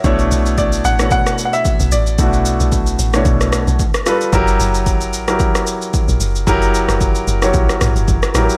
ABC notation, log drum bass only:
X:1
M:4/4
L:1/16
Q:"Swing 16ths" 1/4=112
K:Bm
V:1 name="Log drum bass" clef=bass
B,,,2 B,,,4 A,,,2 z4 z B,,, A,,,2 | B,,,3 B,,,3 A,,,2 B,,,3 B,,, z4 | F,,,2 F,,,4 A,,,2 z4 z ^A,,, F,,,2 | F,,,3 F,,,3 F,,,2 ^A,,, z A,,, F,,, F,,, z =A,,, z |]